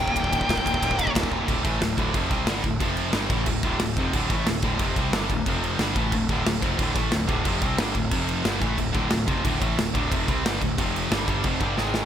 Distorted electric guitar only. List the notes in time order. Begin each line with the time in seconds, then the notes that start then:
0.01 A#2
0.07 D#2 A#2
0.15 D#2 A#2
0.24 D#2 A#2
0.31 D#2 A#2
0.39 D#2 A#2
0.46 D#2 A#2
0.54 D#2 A#2
0.61 D#2 A#2
0.70 D#2 A#2
0.78 D#2 A#2
0.85 D#2 A#2
0.94 D#2 A#2
1.00 D#2 A#2
1.09 D#2 A#2
1.17 D#2 A#2
1.24 D#2 A#2
1.32 D#2 A#2
1.40 D#2 A#2
1.46 D2 A2 D3
1.63 A2 E3 A3
1.81 D2 A2
1.97 D2 A2 D3
2.14 F2 C3 F3
2.30 C3 G3 C4
2.47 G2 D3 G3
2.62 D2 A2
2.80 F2 C3 F3
3.13 G2 D3 G3
3.31 A2 E3 A3
3.48 D2 A2
3.63 D2 A2 D3
3.82 D2 A2
3.98 F2 C3 F3
4.14 D2 A2 D3
4.31 A2 E3 A3
4.47 D2 A2
4.63 D2 A2 D3
4.80 F2 C3 F3
4.97 C3 G3 C4
5.14 G2 D3 G3
5.32 D2 A2
5.47 F2 C3 F3
5.80 G2 D3 G3
5.96 A2 E3 A3
6.14 D2 A2
6.30 D2 A2 D3
6.47 D2 A2
6.62 F2 C3 F3
6.79 D2 A2 D3
6.95 A2 E3 A3
7.11 D2 A2
7.27 D2 A2 D3
7.45 F2 C3 F3
7.62 C3 G3 C4
7.78 G2 D3 G3
7.95 D2 A2
8.12 F2 C3 F3
8.45 G2 D3 G3
8.60 A2 E3 A3
8.78 D2 A2
8.93 D2 A2 D3
9.10 D2 A2
9.27 F2 C3 F3
9.44 D2 A2 D3
9.60 A2 E3 A3
9.77 D2 A2
9.94 D2 A2 D3
10.11 F2 C3 F3
10.28 C3 G3 C4
10.44 G2 D3 G3
10.62 D2 A2
10.78 F2 C3 F3
11.12 G2 D3 G3
11.28 G2 D3 G3
11.44 F2 C3 F3
11.61 G2 D3 G3
11.77 G#2 D#3 G#3